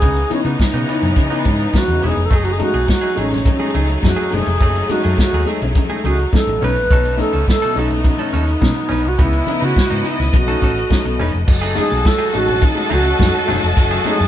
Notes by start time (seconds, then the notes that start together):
Already playing: D#4 G#4
0.02 C#2 C#3 E3 B3 D#4, kick, closed hi-hat, low conga
0.16 closed hi-hat, muted conga
0.30 E3 B3 D#4, muted clean electric guitar stroke, closed hi-hat, high conga
0.34 C#4
0.45 C#3 E3 B3 D#4, closed hi-hat
0.59 D#4, muted clean electric guitar stroke, kick, snare, muted conga
0.73 B2 C#3 E3 B3 D#4, closed hi-hat, muted conga
0.88 E3 B3 D#4, closed hi-hat
1.02 F#2, muted clean electric guitar stroke, closed hi-hat, low conga
1.16 C#3, muted clean electric guitar stroke, kick, closed hi-hat, high conga
1.30 E3 B3 D#4, closed hi-hat
1.45 G#2 B3 D#4, kick, closed hi-hat, high conga
1.60 muted clean electric guitar stroke, closed hi-hat
1.73 B3 D#4, muted clean electric guitar stroke, kick, snare, muted conga, high conga
1.77 F#4
1.87 E2 C#3, muted clean electric guitar stroke, closed hi-hat
2.02 E1 E3 B3 D#4 E4 G#4, open hi-hat, low conga
2.16 F1, muted clean electric guitar stroke, closed hi-hat
2.26 A4
2.30 F#1 F#3 A3 D#4 G#4, kick, closed hi-hat
2.36 G#4
2.44 F#4, closed hi-hat, muted conga
2.53 G#4
2.59 G#3 A3 D#4 F#4, closed hi-hat, high conga
2.73 B1 A3 D#4 G#4, closed hi-hat
2.87 A3 D#4 F#4, muted clean electric guitar stroke, kick, snare
3.01 F#3 A3 D#4 G#4, closed hi-hat, muted conga
3.15 A1 G#3 A3 C#4 D#4 G#4, closed hi-hat
3.31 muted clean electric guitar stroke, snare, closed hi-hat, low conga
3.44 F#3, muted clean electric guitar stroke, kick, closed hi-hat, muted conga, high conga
3.59 G#3 A3 D#4 G#4, closed hi-hat
3.73 C#2 A3 D#4 G#4, closed hi-hat, high conga
3.89 muted clean electric guitar stroke, closed hi-hat
4.01 F#2 A3 D#4, muted clean electric guitar stroke, kick, snare, high conga
4.06 F#4
4.16 F#3 A3 D#4 G#4, closed hi-hat, muted conga
4.31 F#1 A3 D#4 G#4, muted clean electric guitar stroke, open hi-hat, low conga
4.46 F1, muted clean electric guitar stroke, closed hi-hat
4.60 F#1 F#3 A3 D#4 G#4, kick, closed hi-hat
4.75 closed hi-hat
4.89 G#3 A3 D#4 F#4, muted clean electric guitar stroke, closed hi-hat, high conga
5.03 F#2 A3 D#4 G#4, closed hi-hat
5.17 A3 D#4 F#4, muted clean electric guitar stroke, kick, snare, muted conga
5.31 D#2 F#3 D#4 G#4, closed hi-hat
5.36 A3
5.46 G#3 A3 D#4, closed hi-hat
5.50 G#4
5.61 B1, closed hi-hat, low conga
5.74 F#3, muted clean electric guitar stroke, kick, closed hi-hat, muted conga, high conga
5.89 G#3 A3 D#4 G#4, closed hi-hat, muted conga
6.04 C#2 A3 D#4 F#4 G#4, closed hi-hat, high conga
6.19 muted clean electric guitar stroke, closed hi-hat
6.33 A3 D#4 A4, muted clean electric guitar stroke, kick, snare, high conga
6.47 A1 F#3, muted clean electric guitar stroke, closed hi-hat
6.61 B1 A3 B3 C#4 D#4 B4, open hi-hat, low conga
6.76 A#1, muted clean electric guitar stroke, closed hi-hat
6.89 B1 B2 F#3 C#4 D#4 A4, kick, closed hi-hat, muted conga
7.05 closed hi-hat, muted conga
7.17 A3 C#4 D#4 A4, muted clean electric guitar stroke, closed hi-hat, high conga
7.33 C#2 C#4 D#4 A4, closed hi-hat
7.47 C#4 D#4 A4, kick, snare
7.62 B2 F#3 C#4 D#4 A4, closed hi-hat
7.75 B1 A3 C#4 D#4 A4, closed hi-hat
7.80 D#4
7.90 muted clean electric guitar stroke, closed hi-hat, low conga
8.04 B2 F#3, muted clean electric guitar stroke, kick, closed hi-hat, high conga
8.19 A3 C#4 D#4 A4, closed hi-hat
8.33 D#2 C#4 D#4 A4, closed hi-hat, high conga
8.47 muted clean electric guitar stroke, closed hi-hat
8.61 B2 C#4 D#4, muted clean electric guitar stroke, kick, snare, high conga
8.75 B2 F#3, muted clean electric guitar stroke, closed hi-hat, muted conga
8.89 B1 C#4 D#4 B4, open hi-hat, low conga
9.04 C2, muted clean electric guitar stroke, closed hi-hat
9.08 F#4
9.18 C#2 C#3 E3 B3 D#4 E4 D#5, kick, closed hi-hat
9.22 E4
9.33 closed hi-hat
9.47 E3 B3 D#4, muted clean electric guitar stroke, closed hi-hat, high conga
9.60 C#3 E3 B3 D#4, closed hi-hat
9.64 F#4
9.76 B3 D#4, muted clean electric guitar stroke, kick, snare
9.89 G#2 C#3 E3 B3 D#4, closed hi-hat
10.03 E3 B3 D#4, closed hi-hat
10.09 E4
10.19 C#2, muted clean electric guitar stroke, snare, closed hi-hat, low conga
10.32 B1 B2 F#3 A3, muted clean electric guitar stroke, kick, closed hi-hat, high conga
10.37 F#4
10.47 A3 C#4 D#4 A4, closed hi-hat
10.61 A1 C#4 D#4 A4, kick, closed hi-hat, high conga
10.76 muted clean electric guitar stroke, closed hi-hat
10.89 C#4 D#4, kick, snare, high conga
11.04 B1 B2 F#3, muted clean electric guitar stroke, closed hi-hat, muted conga
11.19 E1 C#4 D#4 B4, open hi-hat, low conga
11.33 F1, muted clean electric guitar stroke, closed hi-hat
11.47 F#1 F#3 A3 F#4 A4 D#5 A5, muted clean electric guitar stroke, kick, crash, muted conga
11.62 A3 D#4 G#4, closed hi-hat, muted conga
11.75 G#3 A3 D#4 G#4, closed hi-hat, high conga
11.79 G#4
11.89 B1 A3 D#4, muted clean electric guitar stroke, closed hi-hat
12.05 A4, muted clean electric guitar stroke, kick, snare, muted conga
12.18 F#3 A3 D#4 G#4, closed hi-hat
12.33 A1 G#3 A3 D#4 F#4 A4, closed hi-hat
12.48 muted clean electric guitar stroke, closed hi-hat, low conga
12.62 F#3 D#4, muted clean electric guitar stroke, kick, closed hi-hat, high conga
12.75 G#3 A3 D#4, muted clean electric guitar stroke, closed hi-hat, muted conga
12.90 C#2 A3 D#4 G#4, closed hi-hat, high conga
12.94 F#4
13.05 muted clean electric guitar stroke, closed hi-hat
13.19 F#2 A3 D#4, muted clean electric guitar stroke, kick, snare, high conga
13.33 F#3, muted clean electric guitar stroke, closed hi-hat
13.48 F#1 A3 D#4 G#4, closed hi-hat, low conga
13.61 F1, muted clean electric guitar stroke, closed hi-hat
13.76 F#1 F#3, muted clean electric guitar stroke, kick, closed hi-hat
13.91 A3 D#4 G#4, closed hi-hat, muted conga
14.05 G#3 A3 D#4 G#4, closed hi-hat, high conga
14.09 G#4
14.19 F#2 A3 D#4, muted clean electric guitar stroke, closed hi-hat